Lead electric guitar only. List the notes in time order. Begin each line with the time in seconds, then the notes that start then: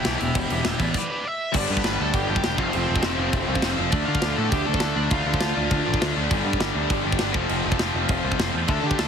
0.06 E5 G5
0.20 E5 G5
0.36 G4 E5
0.52 G4 E5
0.68 G4 E5
0.81 B4 D5
0.98 B4 D5
1.11 B4 D5
1.27 E5
1.57 D4 D5
1.72 B3 B4
1.85 B4 B5
2.01 A4 A5
2.14 G4 G5
2.28 G4 G5
2.57 F4 F5
2.70 C4 C5
3.91 D4 D5
4.05 F4 F5
4.36 A4 A5
4.49 G4 G5
4.66 A4 A5
4.80 A4 A5
4.95 D4 D5
5.11 F4 F5
8.70 A4 A5
8.86 G4 G5
8.99 A4 A5